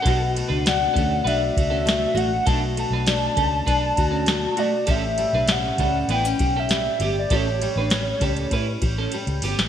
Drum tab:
RD |x-x-x-x-x-x-x-x-|x-x-x-x-x-x-x-x-|x-x-x-x-x-x-x-x-|x-x-x-xxx-x-xxx-|
HH |----------------|----------------|----------------|--------------o-|
SD |----o-------o---|----o-------o---|----o-------o---|----o-o--------o|
BD |o-----o---o-----|o-----o-o-o-----|o-----o---o-----|o-----o-o-o-----|